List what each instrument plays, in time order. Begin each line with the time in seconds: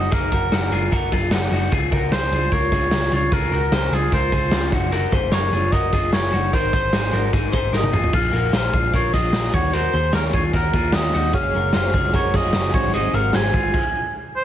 Already playing: clean electric guitar D#4 F#4
0.11 picked electric bass F#1, clean electric guitar D#4 G#4, oboe A#4, kick, closed hi-hat
0.32 picked electric bass F#1, clean electric guitar F#4 A#4, kick, closed hi-hat
0.52 picked electric bass F#1, clean electric guitar D#4 F#4, snare, closed hi-hat
0.71 picked electric bass F#1, clean electric guitar F4 G#4, closed hi-hat
0.92 picked electric bass F#1, clean electric guitar F#4 A#4, kick, closed hi-hat
1.12 picked electric bass F#1, clean electric guitar F4 G#4, kick, snare, closed hi-hat
1.31 picked electric bass F#1, clean electric guitar D#4 F#4, snare, closed hi-hat
1.51 picked electric bass F#1, clean electric guitar D#4 F#4, open hi-hat
1.72 picked electric bass C#2, clean electric guitar F4 G#4, kick, closed hi-hat
1.92 picked electric bass C#2, clean electric guitar F#4 A#4, kick, closed hi-hat
2.11 picked electric bass C#2, clean electric guitar G#4 C5, oboe C5, snare, closed hi-hat
2.31 picked electric bass C#2, clean electric guitar F4 G#4, closed hi-hat
2.52 picked electric bass C#2, clean electric guitar F4 A#4, oboe C#5, kick, closed hi-hat
2.72 picked electric bass C#2, clean electric guitar F4 G#4, kick, snare, closed hi-hat
2.91 picked electric bass C#2, snare, closed hi-hat
3.12 picked electric bass C#2, clean electric guitar C#4 F4, oboe C#5, closed hi-hat
3.32 picked electric bass C#2, clean electric guitar F4 G#4, oboe A#4, kick, closed hi-hat
3.51 picked electric bass C#2, clean electric guitar F#4 A#4, closed hi-hat
3.72 picked electric bass C#2, clean electric guitar G#4 C5, snare, closed hi-hat
3.91 picked electric bass C#2, clean electric guitar F4 G#4, oboe G#4, closed hi-hat
4.12 picked electric bass C#2, clean electric guitar F4 A#4, oboe C5, kick, closed hi-hat
4.32 picked electric bass C#2, clean electric guitar F4 G#4, kick, closed hi-hat
4.51 picked electric bass C#2, clean electric guitar C#4 F4, snare, closed hi-hat
4.72 picked electric bass F#1, clean electric guitar D#4 F#4, kick, closed hi-hat
4.92 clean electric guitar F#4 A#4, closed hi-hat
5.12 picked electric bass F#1, clean electric guitar G#4 C5, kick, closed hi-hat
5.32 picked electric bass F#1, clean electric guitar A#4 C#5, oboe C#5, snare, closed hi-hat
5.52 picked electric bass F#1, clean electric guitar F4 G#4, closed hi-hat
5.72 picked electric bass F#1, clean electric guitar F#4 A#4, oboe D#5, kick, closed hi-hat
5.93 picked electric bass F#1, clean electric guitar F4 G#4, kick, closed hi-hat
6.13 picked electric bass F#1, oboe C#5, snare, closed hi-hat
6.33 picked electric bass F#1, clean electric guitar D#4 F#4, closed hi-hat
6.53 picked electric bass G#1, clean electric guitar D#4 A#4, oboe C5, kick, closed hi-hat
6.73 picked electric bass G#1, clean electric guitar G#4 C5, kick, closed hi-hat
6.93 picked electric bass G#1, clean electric guitar D#4 G#4, snare, closed hi-hat
7.13 picked electric bass G#1, clean electric guitar F#4 A#4, closed hi-hat
7.33 picked electric bass G#1, clean electric guitar D#4 G#4, kick, closed hi-hat
7.52 picked electric bass G#1, clean electric guitar G#4 C5, kick, closed hi-hat
7.73 picked electric bass G#1, clean electric guitar D#4 A#4, oboe D#5, snare
7.83 high tom
7.93 picked electric bass G#1, clean electric guitar F4 G#4, mid tom
8.04 floor tom
8.13 picked electric bass A#1, clean electric guitar F4 G#4, oboe F5, kick, crash
8.33 picked electric bass A#1, clean electric guitar F#4 A#4, closed hi-hat
8.53 picked electric bass A#1, clean electric guitar G#4 C5, oboe F5, snare, closed hi-hat
8.73 picked electric bass A#1, clean electric guitar F4 G#4, kick, closed hi-hat
8.94 picked electric bass A#1, clean electric guitar F4 A#4, oboe C#5, kick, closed hi-hat
9.13 picked electric bass A#1, clean electric guitar F4 G#4, oboe D#5, kick, snare, closed hi-hat
9.33 picked electric bass A#1, snare, closed hi-hat
9.54 picked electric bass D#2, clean electric guitar D#4 F#4, oboe C#5, kick, open hi-hat
9.73 clean electric guitar F#4 A#4, oboe C5, closed hi-hat
9.93 picked electric bass D#2, clean electric guitar G#4 C5, closed hi-hat
10.13 picked electric bass D#2, clean electric guitar A#4 C#5, oboe A#4, snare, closed hi-hat
10.33 picked electric bass D#2, clean electric guitar F4 G#4, oboe C#5, kick, closed hi-hat
10.53 picked electric bass D#2, clean electric guitar F#4 A#4, oboe A#4, kick, closed hi-hat
10.73 picked electric bass D#2, clean electric guitar F4 G#4, kick, closed hi-hat
10.92 picked electric bass D#2, clean electric guitar C#4 F4, oboe D#5, snare, closed hi-hat
11.13 picked electric bass D#2, clean electric guitar D#4 F#4, open hi-hat
11.33 picked electric bass F#1, string section C#3 F#3 G#3, clean electric guitar C#4 G#4, synth keys F#4 G#4 C#5, oboe F5, kick, closed hi-hat
11.54 picked electric bass F#1, clean electric guitar F#4 A#4, closed hi-hat
11.73 picked electric bass F#1, synth keys F#4 G#4 C5, clean electric guitar G#4 C5, oboe F5, snare, closed hi-hat
11.94 picked electric bass F#1, clean electric guitar F4 G#4, kick, closed hi-hat
12.13 picked electric bass F#1, synth keys F#4 G#4 C#5, clean electric guitar F#4 A#4, oboe C#5, kick, closed hi-hat
12.33 picked electric bass F#1, clean electric guitar F4 G#4, synth keys F#4 G#4 C#5, oboe D#5, kick, snare, closed hi-hat
12.53 picked electric bass F#1, synth keys F#4 G#4 C#5, snare, closed hi-hat
12.73 picked electric bass G#1, string section C3, clean electric guitar D#4 F#4, synth keys F#4 G#4 C5, oboe C#5, kick, open hi-hat
12.94 clean electric guitar D#4 G#4, oboe D#5, closed hi-hat
13.13 picked electric bass G#1, clean electric guitar F#4 A#4, oboe F5, closed hi-hat
13.33 picked electric bass G#1, synth keys F#4 G#4 C5, clean electric guitar G#4 C5, oboe G#5, snare, closed hi-hat
13.53 picked electric bass G#1, clean electric guitar F4 G#4, kick, closed hi-hat
13.74 kick, crash
14.36 oboe C5